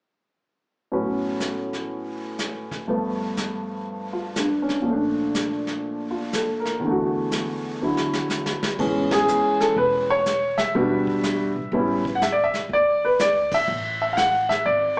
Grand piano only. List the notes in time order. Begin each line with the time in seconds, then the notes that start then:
0.92 A2 F#3 B3 C#4
2.88 G2 F3 A3 B3
4.13 F4
4.38 D4
4.62 C#4
4.82 A#2 F3
4.89 A3 D4
6.11 F4
6.35 A4
6.60 A#4
6.79 E2 D3
6.87 A3 F#4
7.81 D3 F#3 E4
8.79 E3 G#3 B3 C#4
9.12 G#4
9.60 A4
9.77 B4
10.10 C#5
10.58 E5
10.75 G3 B3 D4 F#4
11.73 G3 B3 C#4 E4
12.15 F#5
12.22 E5
12.32 D5
12.44 E5
12.73 D5
13.05 B4
13.21 D5
13.54 E5
14.02 E5
14.13 F5
14.17 F#5
14.49 E5
14.66 D5